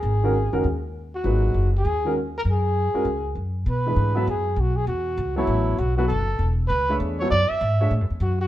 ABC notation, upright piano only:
X:1
M:4/4
L:1/8
Q:"Swing" 1/4=198
K:G#m
V:1 name="Upright piano"
z [D,G,CFA] z [D,G,CFA] z4 | [A,,F,DGB]3 z2 [D,G,CFA] z2 | z3 [G,CEFA] z4 | [K:Bdor] z [E,A,DGB]2 [F,B,EAe] z4 |
z3 [F,B,EAc]3 z [F,B,EAB] | z4 z [A,DGce]2 [F,B,EAc] | z3 [A,DGce] z4 |]